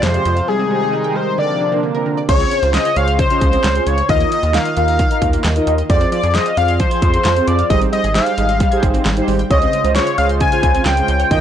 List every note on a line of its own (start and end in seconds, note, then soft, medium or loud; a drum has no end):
0.00 0.19 F2 loud
0.00 1.36 C3 medium
0.00 0.45 F3 medium
0.00 0.12 F3 medium
0.00 0.46 G#3 medium
0.00 0.47 F4 medium
0.00 0.48 C5 loud
0.00 snare loud
0.00 closed hi-hat medium
0.14 0.37 C4 medium
0.14 0.37 F4 medium
0.14 0.37 G4 medium
0.14 0.24 G#4 medium
0.14 closed hi-hat medium
0.25 0.41 F2 loud
0.25 0.35 F3 medium
0.25 closed hi-hat medium
0.37 0.46 F5 medium
0.37 closed hi-hat soft
0.48 1.38 D#3 medium
0.48 0.57 G3 medium
0.48 1.38 G#3 medium
0.48 0.63 C4 medium
0.48 1.38 D#4 medium
0.48 0.63 G4 medium
0.48 0.63 G#4 medium
0.48 1.18 G#4 loud
0.59 0.69 C4 medium
0.71 0.80 G3 medium
0.71 0.94 C4 medium
0.71 0.94 G4 medium
0.71 0.94 G#4 medium
0.82 0.91 G#4 medium
0.93 1.02 G3 medium
1.04 1.28 C4 medium
1.04 1.28 G4 medium
1.04 1.28 A#4 medium
1.04 1.14 G5 medium
1.16 1.25 G3 medium
1.16 1.38 C5 medium
1.38 2.28 C3 medium
1.38 1.47 D3 medium
1.38 2.28 F3 medium
1.38 2.28 A#3 medium
1.38 1.61 C4 medium
1.38 1.61 D4 medium
1.38 2.28 D4 medium
1.38 1.62 A#4 medium
1.38 1.81 D5 medium
1.61 1.70 D3 medium
1.72 1.81 C4 medium
1.72 1.88 C4 medium
1.72 1.88 D4 medium
1.72 1.88 A#4 medium
1.83 1.93 D3 medium
1.95 2.18 C4 medium
1.95 2.18 D4 medium
1.95 2.04 A#4 medium
1.95 2.18 A#4 loud
2.06 2.15 D3 medium
2.17 2.27 D5 medium
2.29 2.44 C#2 loud
2.29 2.38 C#3 medium
2.29 2.59 C#4 medium
2.29 2.59 F4 medium
2.29 2.59 G#4 medium
2.29 2.36 C#5 loud
2.29 2.71 C#5 loud
2.29 2.59 C#5 medium
2.29 kick loud
2.29 closed hi-hat medium
2.29 crash loud
2.40 2.49 C4 medium
2.40 closed hi-hat soft
2.51 2.60 C#3 medium
2.51 closed hi-hat medium
2.62 2.78 C#2 loud
2.62 2.72 F4 medium
2.62 2.76 C5 medium
2.62 closed hi-hat medium
2.74 2.83 C#3 medium
2.74 2.89 C#4 medium
2.74 2.89 F4 medium
2.74 2.89 G#4 medium
2.74 2.89 C5 medium
2.74 2.98 D#5 loud
2.74 snare loud
2.74 closed hi-hat medium
2.85 2.94 C#5 medium
2.85 closed hi-hat medium
2.96 3.20 C#2 loud
2.96 3.06 C#3 medium
2.96 3.19 C#4 medium
2.96 3.19 F4 medium
2.96 3.19 G#4 medium
2.96 3.19 C5 medium
2.96 3.03 C#5 medium
2.96 3.19 F5 loud
2.96 closed hi-hat medium
3.08 3.17 C6 medium
3.08 closed hi-hat medium
3.19 3.28 C#3 medium
3.19 3.89 C5 loud
3.19 kick medium
3.19 closed hi-hat medium
3.30 3.61 C#4 medium
3.30 3.61 F4 medium
3.30 3.61 G#4 medium
3.30 3.61 D#5 medium
3.30 3.39 F6 medium
3.30 closed hi-hat medium
3.41 3.57 C#2 medium
3.41 3.51 C#3 medium
3.41 kick medium
3.41 closed hi-hat medium
3.52 3.62 C4 medium
3.52 closed hi-hat medium
3.64 3.80 C#2 loud
3.64 3.73 C#3 medium
3.64 snare loud
3.64 clap medium
3.64 closed hi-hat medium
3.75 3.98 C#4 medium
3.75 3.98 F4 medium
3.75 3.98 G#4 medium
3.75 3.98 C5 medium
3.75 closed hi-hat medium
3.86 4.02 C#2 loud
3.86 3.96 C#3 medium
3.86 4.09 C#5 medium
3.86 closed hi-hat medium
3.98 4.07 C#5 medium
3.98 closed hi-hat soft
4.09 4.25 D#2 loud
4.09 4.18 D#3 medium
4.09 4.40 D#4 medium
4.09 4.40 F4 medium
4.09 4.40 A#4 medium
4.09 4.40 D#5 medium
4.09 4.30 D#5 loud
4.09 4.16 F5 loud
4.09 kick loud
4.09 closed hi-hat medium
4.20 4.29 A#3 medium
4.20 closed hi-hat soft
4.32 4.41 D#3 medium
4.32 4.53 D#5 loud
4.32 closed hi-hat medium
4.43 4.59 D#2 medium
4.43 4.52 F4 medium
4.43 4.57 D#5 medium
4.43 closed hi-hat medium
4.54 4.63 D#3 medium
4.54 4.70 D#4 medium
4.54 4.70 F4 medium
4.54 4.70 A#4 medium
4.54 4.70 D#5 medium
4.54 5.63 F5 loud
4.54 snare loud
4.54 closed hi-hat medium
4.65 4.75 D#5 medium
4.65 closed hi-hat medium
4.77 5.01 D#2 loud
4.77 4.86 D#3 medium
4.77 5.00 D#4 medium
4.77 5.00 F4 medium
4.77 5.00 A#4 medium
4.77 5.00 D#5 medium
4.77 4.84 F5 medium
4.77 closed hi-hat medium
4.88 4.97 A#5 medium
4.88 closed hi-hat medium
4.99 5.09 D#3 medium
4.99 kick medium
4.99 closed hi-hat medium
5.10 5.41 D#4 loud
5.10 5.41 F4 medium
5.10 5.41 A#4 medium
5.10 5.41 F5 loud
5.10 5.20 F6 medium
5.10 closed hi-hat medium
5.22 5.38 D#2 loud
5.22 5.31 D#3 medium
5.22 kick medium
5.22 closed hi-hat medium
5.33 5.42 A#3 medium
5.33 closed hi-hat medium
5.44 5.60 D#2 loud
5.44 5.54 D#3 medium
5.44 snare loud
5.44 clap medium
5.44 closed hi-hat medium
5.56 5.79 D#4 medium
5.56 5.79 F4 medium
5.56 5.79 A#4 medium
5.56 5.79 D#5 loud
5.56 closed hi-hat medium
5.67 5.83 D#2 loud
5.67 5.76 D#3 medium
5.67 5.74 D#5 medium
5.67 closed hi-hat medium
5.78 5.88 D#5 medium
5.78 closed hi-hat soft
5.90 6.05 F2 loud
5.90 5.99 F3 medium
5.90 6.20 C4 medium
5.90 6.20 F4 medium
5.90 6.20 G#4 medium
5.90 6.20 C5 medium
5.90 6.11 D5 loud
5.90 kick loud
5.90 closed hi-hat medium
6.01 6.10 C4 medium
6.01 closed hi-hat soft
6.12 6.21 F3 medium
6.12 6.36 D5 loud
6.12 closed hi-hat medium
6.23 6.39 F2 loud
6.23 6.33 G#4 medium
6.23 closed hi-hat medium
6.35 6.44 F3 medium
6.35 6.50 C4 medium
6.35 6.50 F4 medium
6.35 6.50 G#4 medium
6.35 6.50 C5 medium
6.35 6.57 D#5 loud
6.35 snare loud
6.35 closed hi-hat medium
6.46 6.55 F5 medium
6.46 closed hi-hat medium
6.57 6.81 F2 loud
6.57 6.66 F3 medium
6.57 6.80 C4 medium
6.57 6.80 F4 medium
6.57 6.80 G#4 medium
6.57 6.80 D5 medium
6.57 6.78 F5 loud
6.57 closed hi-hat medium
6.68 6.78 C6 medium
6.68 closed hi-hat medium
6.80 6.89 F3 medium
6.80 7.49 C5 loud
6.80 kick medium
6.80 closed hi-hat medium
6.91 7.22 C4 medium
6.91 7.22 F4 medium
6.91 7.22 G#4 medium
6.91 7.22 C5 medium
6.91 7.00 G#6 medium
6.91 closed hi-hat medium
7.02 7.18 F2 loud
7.02 7.11 F3 medium
7.02 kick medium
7.02 closed hi-hat medium
7.13 7.23 C4 medium
7.13 closed hi-hat medium
7.25 7.41 F2 loud
7.25 7.34 F3 medium
7.25 snare loud
7.25 clap medium
7.25 closed hi-hat medium
7.36 7.59 C4 medium
7.36 7.59 F4 medium
7.36 7.59 G#4 medium
7.36 7.59 C5 medium
7.36 closed hi-hat medium
7.47 7.63 F2 loud
7.47 7.57 F3 medium
7.47 7.69 D5 loud
7.47 closed hi-hat medium
7.59 7.68 F5 medium
7.59 closed hi-hat soft
7.70 7.86 G#1 loud
7.70 7.79 G3 medium
7.70 8.01 D#4 medium
7.70 8.01 G4 medium
7.70 8.01 G#4 medium
7.70 8.01 C5 medium
7.70 7.80 D#5 loud
7.70 kick loud
7.70 closed hi-hat medium
7.81 7.90 C4 medium
7.81 closed hi-hat soft
7.93 8.02 G3 medium
7.93 8.14 D#5 loud
7.93 closed hi-hat medium
8.04 8.20 G#1 loud
8.04 8.13 G#4 medium
8.04 closed hi-hat medium
8.15 8.24 G3 medium
8.15 8.31 D#4 medium
8.15 8.31 G4 medium
8.15 8.31 G#4 medium
8.15 8.30 C5 medium
8.15 9.24 F5 loud
8.15 snare loud
8.15 closed hi-hat medium
8.26 8.36 G5 medium
8.26 closed hi-hat medium
8.38 8.61 G#1 loud
8.38 8.47 G3 medium
8.38 8.61 D#4 medium
8.38 8.61 G4 medium
8.38 8.61 G#4 medium
8.38 8.61 D#5 medium
8.38 closed hi-hat medium
8.49 8.58 C6 medium
8.49 closed hi-hat medium
8.60 8.69 G3 medium
8.60 kick medium
8.60 closed hi-hat medium
8.71 9.02 D#4 medium
8.71 9.02 G4 medium
8.71 9.02 G#4 medium
8.71 9.02 C5 loud
8.71 8.81 G#6 medium
8.71 closed hi-hat medium
8.83 8.99 G#1 loud
8.83 8.92 G3 medium
8.83 kick medium
8.83 closed hi-hat medium
8.94 9.03 C4 medium
8.94 closed hi-hat medium
9.05 9.21 G#1 loud
9.05 9.14 G3 medium
9.05 snare loud
9.05 clap medium
9.05 closed hi-hat medium
9.17 9.40 D#4 medium
9.17 9.40 G4 medium
9.17 9.40 G#4 medium
9.17 9.40 C5 loud
9.17 closed hi-hat medium
9.28 9.44 G#1 loud
9.28 9.37 G3 medium
9.28 open hi-hat medium
9.39 9.48 G5 medium
9.39 closed hi-hat soft
9.50 9.66 C#2 loud
9.50 9.60 C#3 medium
9.50 11.29 C#3 medium
9.50 11.29 G#3 medium
9.50 9.81 C#4 medium
9.50 11.29 F4 medium
9.50 9.81 F4 medium
9.50 9.81 G#4 medium
9.50 11.29 C5 medium
9.50 9.81 C5 medium
9.50 9.57 C#5 loud
9.50 9.92 D#5 loud
9.50 kick loud
9.50 closed hi-hat medium
9.62 9.71 C4 medium
9.62 closed hi-hat soft
9.73 9.82 C#3 medium
9.73 closed hi-hat medium
9.84 10.00 C#2 loud
9.84 9.94 F4 medium
9.84 9.98 C5 medium
9.84 closed hi-hat medium
9.95 10.05 C#3 medium
9.95 10.11 C#4 medium
9.95 10.11 F4 medium
9.95 10.11 G#4 medium
9.95 10.11 C5 medium
9.95 10.16 C#5 loud
9.95 snare loud
9.95 closed hi-hat medium
10.07 10.16 C#5 medium
10.07 closed hi-hat medium
10.18 10.42 C#2 loud
10.18 10.27 C#3 medium
10.18 10.41 C#4 medium
10.18 10.41 F4 medium
10.18 10.41 G#4 medium
10.18 10.25 C#5 medium
10.18 10.41 D#5 medium
10.18 10.28 F5 loud
10.18 closed hi-hat medium
10.29 10.39 C6 medium
10.29 closed hi-hat soft
10.40 10.50 C#3 medium
10.40 10.87 G#5 loud
10.40 kick medium
10.40 closed hi-hat medium
10.52 10.83 C#4 medium
10.52 10.82 F4 medium
10.52 10.82 G#4 medium
10.52 10.83 C5 medium
10.52 10.61 F6 medium
10.52 closed hi-hat medium
10.63 10.79 C#2 loud
10.63 10.73 C#3 medium
10.63 kick medium
10.63 closed hi-hat medium
10.75 10.84 C4 medium
10.75 closed hi-hat medium
10.86 11.02 C#2 loud
10.86 10.95 C#3 medium
10.86 11.31 G5 loud
10.86 snare loud
10.86 clap medium
10.86 closed hi-hat medium
10.97 11.20 C#4 medium
10.97 11.20 F4 medium
10.97 11.20 G#4 medium
10.97 11.20 C5 medium
10.97 closed hi-hat medium
11.08 11.24 C#2 loud
11.08 11.18 C#3 medium
11.08 closed hi-hat medium
11.20 11.29 C#5 medium
11.20 closed hi-hat soft
11.31 11.41 D#2 loud
11.31 11.41 D#3 medium
11.31 11.40 D#3 loud
11.31 11.41 F3 medium
11.31 11.41 A#3 medium
11.31 11.41 D#4 medium
11.31 11.41 F4 medium
11.31 11.41 A#4 medium
11.31 11.41 D#5 medium
11.31 11.38 D#5 loud
11.31 11.41 G5 loud
11.31 kick loud
11.31 closed hi-hat medium